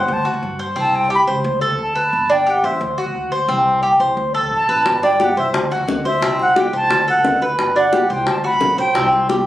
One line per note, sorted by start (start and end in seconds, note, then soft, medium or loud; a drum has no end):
0.00 0.24 C5 medium
0.00 0.15 F#5 medium
0.08 0.33 D2 loud
0.13 0.28 A5 medium
0.25 0.58 F#4 medium
0.34 0.42 D2 medium
0.43 0.75 G2 loud
0.59 0.76 C5 medium
0.76 1.25 C2 loud
0.76 1.09 C4 medium
0.80 0.97 A5 medium
0.96 1.12 G5 loud
1.10 1.27 G4 medium
1.15 1.24 B5 medium
1.27 1.44 C#2 loud
1.27 1.61 C5 medium
1.44 1.69 D2 loud
1.61 1.95 A4 medium
1.70 1.78 D2 medium
1.78 2.11 D2 medium
1.78 2.33 A5 medium
1.95 2.29 B4 medium
2.13 2.62 G1 medium
2.30 2.46 D4 medium
2.30 2.52 G5 medium
2.46 2.63 G4 medium
2.46 2.67 F#5 medium
2.63 2.80 A1 loud
2.63 2.97 C5 medium
2.63 2.82 E5 medium
2.81 3.05 D2 loud
2.98 3.31 F#4 medium
3.06 3.14 D2 medium
3.15 3.47 D2 medium
3.32 3.49 C5 medium
3.48 3.97 C2 loud
3.48 3.82 C4 medium
3.83 4.00 G4 medium
4.00 4.16 C2 medium
4.00 4.33 C5 medium
4.17 4.42 D2 loud
4.34 4.68 A4 medium
4.43 4.50 D2 medium
4.51 4.67 B1 medium
4.56 5.02 A5 loud
4.68 4.84 A1 medium
4.68 5.02 B4 medium
4.86 5.34 G1 medium
4.86 high bongo medium
5.03 5.20 D4 medium
5.03 5.25 G5 medium
5.03 high bongo soft
5.20 5.37 G4 medium
5.20 high bongo medium
5.24 5.38 F#5 medium
5.37 5.53 C2 loud
5.37 5.70 C5 medium
5.37 5.48 E5 medium
5.54 5.78 D2 loud
5.54 high bongo medium
5.71 6.05 F#4 medium
5.71 high bongo soft
5.80 5.87 D2 medium
5.87 6.20 D2 loud
5.87 high bongo soft
5.87 low bongo medium
6.05 6.22 C5 medium
6.05 6.38 E5 medium
6.05 high bongo soft
6.21 6.71 C2 loud
6.21 6.55 C4 medium
6.21 high bongo medium
6.39 6.62 F#5 loud
6.39 high bongo soft
6.56 6.73 G4 medium
6.56 high bongo medium
6.61 6.75 G5 medium
6.73 6.90 C2 loud
6.73 7.07 C5 medium
6.73 7.07 A5 loud
6.90 7.15 D2 loud
6.90 high bongo medium
7.08 7.41 A4 medium
7.08 7.41 F#5 medium
7.08 high bongo soft
7.16 7.24 D2 medium
7.24 7.57 D2 medium
7.24 high bongo soft
7.24 low bongo medium
7.42 7.75 B4 medium
7.42 high bongo soft
7.59 8.08 G1 medium
7.59 high bongo medium
7.76 7.93 D4 medium
7.76 8.09 F#5 medium
7.76 high bongo soft
7.93 8.10 G4 medium
7.93 high bongo medium
8.10 8.26 C2 loud
8.10 8.43 C5 medium
8.10 8.33 G5 medium
8.27 8.52 D2 loud
8.27 high bongo medium
8.31 8.45 A5 medium
8.44 8.77 F#4 medium
8.44 8.77 B5 loud
8.44 high bongo soft
8.53 8.61 D2 medium
8.61 8.94 B1 medium
8.61 high bongo soft
8.61 low bongo medium
8.78 8.95 C5 medium
8.78 9.11 G5 loud
8.78 high bongo soft
8.95 9.44 C2 loud
8.95 9.28 C4 medium
8.95 high bongo medium
9.13 high bongo soft
9.29 9.46 G4 medium
9.29 high bongo medium